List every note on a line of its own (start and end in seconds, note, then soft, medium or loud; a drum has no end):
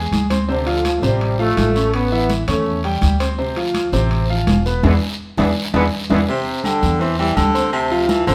0.00 0.24 G#3 medium
0.00 0.24 G#4 medium
0.00 0.24 G#5 medium
0.11 0.97 D2 medium
0.11 high conga medium
0.11 high timbale medium
0.11 short guiro medium
0.30 0.45 C4 medium
0.30 0.45 C5 medium
0.30 0.45 C6 medium
0.30 high conga medium
0.30 high timbale medium
0.30 short guiro medium
0.48 0.63 C3 medium
0.48 0.83 D3 medium
0.48 0.64 C4 medium
0.48 0.64 C5 medium
0.48 long guiro medium
0.66 0.96 F3 medium
0.66 0.96 F4 medium
0.66 0.97 F5 medium
0.66 high conga soft
0.66 high timbale medium
0.85 0.90 F3 medium
0.85 high conga medium
0.85 high timbale medium
0.85 short guiro medium
0.97 1.03 A3 medium
1.02 1.53 A1 medium
1.02 1.32 C3 medium
1.02 1.39 G3 loud
1.02 1.33 C4 medium
1.02 1.33 C5 medium
1.02 high conga soft
1.02 short guiro medium
1.21 high conga soft
1.21 high timbale medium
1.21 long guiro medium
1.39 1.69 F3 medium
1.39 1.90 A3 loud
1.39 1.69 F4 medium
1.39 1.69 F5 medium
1.39 high conga soft
1.57 2.42 A1 medium
1.57 high conga medium
1.57 high timbale medium
1.57 low timbale medium
1.57 short guiro medium
1.75 2.05 C#4 medium
1.75 2.05 C#5 medium
1.75 2.05 C#6 medium
1.75 short guiro medium
1.93 2.30 B3 loud
1.93 high conga soft
1.93 high timbale medium
1.93 long guiro medium
2.12 2.42 E3 medium
2.12 2.42 E4 medium
2.12 2.42 E5 medium
2.12 high conga soft
2.30 high conga medium
2.30 high timbale medium
2.30 short guiro medium
2.48 2.98 E2 medium
2.48 2.82 A3 medium
2.48 2.78 C#4 medium
2.48 2.78 C#5 medium
2.48 2.78 C#6 medium
2.48 high conga soft
2.48 low conga medium
2.48 high timbale loud
2.48 short guiro medium
2.66 high conga soft
2.66 long guiro medium
2.84 3.14 G3 medium
2.84 3.14 G4 medium
2.84 3.14 G5 medium
2.84 high conga soft
2.84 high timbale medium
3.01 3.87 D2 medium
3.01 high conga medium
3.01 high timbale medium
3.01 short guiro medium
3.20 3.35 C4 medium
3.20 3.35 C5 medium
3.20 3.35 C6 medium
3.20 high timbale medium
3.20 short guiro medium
3.38 3.53 C3 medium
3.38 3.54 C4 medium
3.38 3.54 C5 medium
3.38 high conga soft
3.38 long guiro medium
3.56 3.86 F3 medium
3.56 3.86 F4 medium
3.56 3.87 F5 medium
3.56 high conga soft
3.56 high timbale medium
3.74 high conga medium
3.74 high timbale medium
3.74 short guiro medium
3.92 4.43 A1 medium
3.92 4.23 C3 medium
3.92 4.23 C4 medium
3.92 4.23 C5 medium
3.92 high conga soft
3.92 short guiro medium
4.11 high conga soft
4.11 high timbale medium
4.11 long guiro medium
4.29 4.59 F3 medium
4.29 4.59 F4 medium
4.29 4.59 F5 medium
4.29 high conga soft
4.47 4.81 E1 medium
4.47 high conga medium
4.47 high timbale medium
4.47 low timbale medium
4.47 short guiro medium
4.66 4.80 B3 medium
4.66 4.81 B4 medium
4.66 4.81 B5 medium
4.66 short guiro medium
4.83 4.97 E2 loud
4.83 4.93 E3 loud
4.83 4.93 G#3 loud
4.83 4.93 B3 loud
4.83 4.95 D4 medium
4.83 4.95 E4 medium
4.83 4.95 G#4 medium
4.83 high conga loud
4.83 high timbale loud
4.83 long guiro loud
5.37 5.51 E2 loud
5.37 5.47 E3 loud
5.37 5.47 G#3 medium
5.37 5.47 B3 medium
5.37 5.50 D4 loud
5.37 5.50 E4 loud
5.37 5.50 G#4 loud
5.37 high conga loud
5.37 high timbale loud
5.37 long guiro loud
5.74 5.87 E2 medium
5.74 5.83 E3 loud
5.74 5.83 G#3 loud
5.74 5.83 B3 loud
5.74 5.85 D4 loud
5.74 5.85 E4 loud
5.74 5.85 G#4 loud
5.74 high conga medium
5.74 high timbale loud
5.74 long guiro loud
6.10 6.24 E2 medium
6.10 6.19 E3 loud
6.10 6.19 G#3 medium
6.10 6.19 B3 loud
6.10 6.22 D4 medium
6.10 6.22 E4 loud
6.10 6.22 G#4 loud
6.10 high conga loud
6.10 high timbale loud
6.10 long guiro loud
6.28 6.65 C3 medium
6.28 6.58 C3 medium
6.28 6.58 C4 medium
6.28 6.58 C5 medium
6.28 long guiro medium
6.46 high conga soft
6.64 7.02 D3 medium
6.64 6.94 G3 medium
6.64 6.94 G4 medium
6.64 6.95 G5 medium
6.64 high conga medium
6.64 low agogo loud
6.64 short guiro medium
6.82 7.33 E2 loud
6.82 high conga soft
6.82 short guiro medium
7.00 7.18 E3 loud
7.00 7.15 C4 medium
7.00 7.16 C5 medium
7.00 7.16 C6 medium
7.00 high conga soft
7.00 low agogo medium
7.00 long guiro medium
7.18 7.38 E3 medium
7.18 7.48 G3 medium
7.18 7.49 G4 medium
7.18 7.49 G5 medium
7.18 high conga soft
7.18 low agogo medium
7.36 8.21 D2 medium
7.36 7.72 D3 medium
7.36 high conga medium
7.36 low agogo loud
7.36 short guiro medium
7.54 7.84 C4 medium
7.54 7.84 C5 medium
7.54 7.85 C6 medium
7.54 short guiro medium
7.73 8.10 C3 medium
7.73 high conga soft
7.73 low agogo loud
7.73 long guiro medium
7.91 8.21 F3 medium
7.91 8.21 F4 medium
7.91 8.21 F5 medium
7.91 high conga soft
8.08 8.26 E3 medium
8.08 high conga loud
8.08 low agogo medium
8.08 short guiro medium
8.27 8.35 A1 loud
8.27 8.35 D3 medium
8.27 8.35 C4 medium
8.27 8.35 C5 medium
8.27 8.35 C6 medium
8.27 high conga soft
8.27 low conga medium
8.27 low agogo loud
8.27 short guiro medium